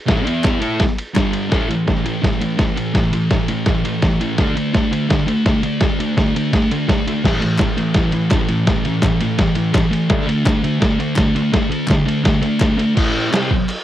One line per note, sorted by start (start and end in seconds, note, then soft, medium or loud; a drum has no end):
0.07 0.25 A2 medium
0.07 0.25 E3 loud
0.07 0.27 A3 loud
0.07 kick loud
0.07 snare loud
0.07 ride loud
0.25 0.61 E3 loud
0.25 0.60 B3 medium
0.25 0.60 E4 loud
0.25 ride medium
0.44 kick loud
0.44 snare loud
0.44 clap medium
0.44 ride loud
0.60 0.79 A3 medium
0.60 0.79 E4 loud
0.60 0.80 A4 loud
0.60 ride medium
0.80 kick loud
0.80 snare loud
0.80 ride loud
0.98 ride medium
1.14 1.50 G2 loud
1.14 1.50 D3 loud
1.14 1.51 G3 loud
1.14 kick loud
1.14 snare loud
1.14 clap medium
1.14 ride loud
1.33 ride medium
1.50 1.67 A2 medium
1.50 1.68 E3 medium
1.50 1.69 A3 medium
1.50 kick loud
1.50 snare loud
1.50 ride loud
1.68 1.85 A2 medium
1.68 1.85 E3 medium
1.68 ride medium
1.87 2.03 A2 medium
1.87 2.04 E3 medium
1.87 kick loud
1.87 snare loud
1.87 ride medium
2.05 2.21 A2 medium
2.05 2.21 E3 medium
2.05 ride medium
2.22 2.39 A2 medium
2.22 2.39 E3 medium
2.22 kick loud
2.22 snare loud
2.22 ride loud
2.41 2.56 A2 medium
2.41 2.57 E3 medium
2.41 ride medium
2.58 2.74 A2 medium
2.58 2.75 E3 medium
2.58 kick loud
2.58 snare loud
2.58 ride loud
2.76 2.93 A2 medium
2.76 2.93 E3 medium
2.76 ride medium
2.94 3.11 A2 medium
2.94 3.11 E3 medium
2.94 kick loud
2.94 snare loud
2.94 ride loud
3.13 3.29 A2 medium
3.13 3.29 E3 medium
3.13 ride medium
3.30 3.47 A2 medium
3.30 3.47 E3 medium
3.30 kick loud
3.30 snare loud
3.30 ride loud
3.48 3.65 A2 medium
3.48 3.65 E3 medium
3.48 ride medium
3.66 3.83 A2 medium
3.66 3.83 E3 medium
3.66 kick loud
3.66 snare loud
3.66 ride loud
3.85 4.01 A2 medium
3.85 4.01 E3 medium
3.85 ride medium
4.02 4.19 A2 medium
4.02 4.19 E3 medium
4.02 kick loud
4.02 snare loud
4.02 ride loud
4.21 4.37 A2 medium
4.21 4.37 E3 medium
4.21 ride medium
4.38 4.55 D3 loud
4.38 4.55 A3 loud
4.38 4.56 D4 loud
4.38 kick loud
4.38 snare loud
4.38 ride loud
4.56 4.72 D3 medium
4.56 4.72 A3 medium
4.56 ride medium
4.73 4.90 D3 medium
4.73 4.90 A3 medium
4.73 kick loud
4.73 snare loud
4.73 ride medium
4.91 5.08 D3 medium
4.91 5.08 A3 medium
4.91 ride medium
5.09 5.25 D3 medium
5.09 5.26 A3 medium
5.09 kick loud
5.09 snare loud
5.09 ride loud
5.27 5.43 D3 medium
5.27 5.44 A3 medium
5.27 ride medium
5.45 5.62 D3 medium
5.45 5.62 A3 medium
5.45 kick loud
5.45 snare loud
5.45 ride loud
5.63 5.79 D3 medium
5.63 5.80 A3 medium
5.63 ride medium
5.81 5.98 D3 medium
5.81 5.98 A3 medium
5.81 kick loud
5.81 snare loud
5.81 ride loud
6.00 6.16 D3 medium
6.00 6.16 A3 medium
6.00 ride medium
6.17 6.34 D3 medium
6.17 6.34 A3 medium
6.17 kick loud
6.17 snare loud
6.17 ride loud
6.36 6.52 D3 medium
6.36 6.52 A3 medium
6.36 ride medium
6.53 6.69 D3 medium
6.53 6.69 A3 loud
6.53 kick loud
6.53 snare loud
6.53 ride loud
6.71 6.87 D3 medium
6.71 6.87 A3 medium
6.71 ride medium
6.88 7.04 D3 medium
6.88 7.05 A3 medium
6.88 kick loud
6.88 snare loud
6.88 ride loud
7.07 7.23 D3 medium
7.07 7.23 A3 medium
7.07 ride medium
7.24 7.40 A2 medium
7.24 7.41 E3 medium
7.24 7.42 A3 medium
7.24 kick loud
7.24 snare loud
7.24 crash loud
7.41 7.58 A2 medium
7.41 7.58 E3 medium
7.41 ride medium
7.58 7.76 A2 medium
7.58 7.76 E3 medium
7.58 kick loud
7.58 snare loud
7.58 clap loud
7.58 ride medium
7.77 7.94 A2 medium
7.77 7.94 E3 medium
7.77 ride medium
7.94 8.12 A2 medium
7.94 8.12 E3 medium
7.94 kick loud
7.94 snare loud
7.94 ride loud
8.12 8.30 A2 medium
8.12 8.30 E3 medium
8.12 ride medium
8.31 8.48 A2 medium
8.31 8.48 E3 loud
8.31 kick loud
8.31 snare loud
8.31 clap medium
8.31 ride loud
8.48 8.65 A2 medium
8.48 8.65 E3 medium
8.48 ride medium
8.67 8.83 A2 medium
8.67 8.83 E3 medium
8.67 kick loud
8.67 snare loud
8.67 ride loud
8.85 9.01 A2 medium
8.85 9.02 E3 medium
8.85 ride medium
9.02 9.19 A2 medium
9.02 9.19 E3 medium
9.02 kick loud
9.02 snare loud
9.02 clap loud
9.02 ride medium
9.21 9.37 A2 medium
9.21 9.37 E3 medium
9.21 ride medium
9.38 9.55 A2 medium
9.38 9.55 E3 medium
9.38 kick loud
9.38 snare loud
9.38 ride loud
9.55 9.73 A2 medium
9.55 9.73 E3 medium
9.55 ride medium
9.74 9.90 A2 medium
9.74 9.90 E3 loud
9.74 kick loud
9.74 snare loud
9.74 clap loud
9.74 ride loud
9.91 10.08 A2 medium
9.91 10.08 E3 medium
9.91 ride medium
10.09 10.26 D3 medium
10.09 10.26 A3 loud
10.09 10.28 D4 loud
10.09 kick loud
10.09 snare loud
10.09 ride loud
10.28 10.44 D3 medium
10.28 10.44 A3 medium
10.28 ride medium
10.45 10.62 D3 medium
10.45 10.62 A3 medium
10.45 kick loud
10.45 snare loud
10.45 clap loud
10.45 ride medium
10.63 10.79 D3 medium
10.63 10.79 A3 medium
10.63 ride medium
10.80 10.97 D3 medium
10.80 10.97 A3 medium
10.80 kick loud
10.80 snare loud
10.80 ride loud
10.99 11.15 D3 medium
10.99 11.15 A3 medium
10.99 ride medium
11.16 11.33 D3 medium
11.16 11.33 A3 loud
11.16 kick loud
11.16 snare loud
11.16 clap loud
11.16 ride loud
11.35 11.51 D3 medium
11.35 11.51 A3 medium
11.35 ride medium
11.52 11.68 D3 medium
11.52 11.69 A3 loud
11.52 kick loud
11.52 snare loud
11.52 ride loud
11.69 11.86 D3 medium
11.69 11.86 A3 medium
11.69 ride medium
11.87 12.04 D3 medium
11.87 12.04 A3 medium
11.87 kick loud
11.87 snare loud
11.87 clap loud
11.87 ride medium
12.06 12.22 D3 medium
12.06 12.23 A3 medium
12.06 ride medium
12.24 12.40 D3 medium
12.24 12.40 A3 loud
12.24 kick loud
12.24 snare loud
12.24 ride loud
12.41 12.58 D3 medium
12.41 12.58 A3 medium
12.41 ride medium
12.60 12.76 D3 medium
12.60 12.76 A3 loud
12.60 kick loud
12.60 snare loud
12.60 clap medium
12.60 ride loud
12.77 12.94 D3 medium
12.77 12.94 A3 medium
12.77 ride medium
12.95 13.31 A2 medium
12.95 13.31 E3 medium
12.95 13.31 A3 loud
12.95 kick loud
12.95 crash loud
12.95 crash medium
13.32 13.49 C3 loud
13.32 13.49 G3 medium
13.32 13.50 C4 loud
13.32 snare loud
13.32 clap loud
13.32 crash medium
13.51 kick medium
13.69 clap medium
13.69 crash medium